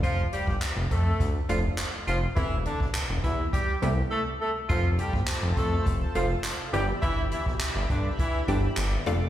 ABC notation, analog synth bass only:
X:1
M:4/4
L:1/16
Q:1/4=103
K:Gmix
V:1 name="Analog synth bass" clef=bass
F,,,3 G,,, z F,,, F,,2 D,,2 F,,,2 z2 F,,,2 | E,,,3 A,,, z E,,, E,,2 z2 C,,2 z4 | F,,,3 G,,, z F,,, F,,2 F,,,2 F,,,2 z2 G,,,2 | G,,,3 B,,, z G,,, G,,2 z2 G,,,2 G,,,2 F,,,2 |]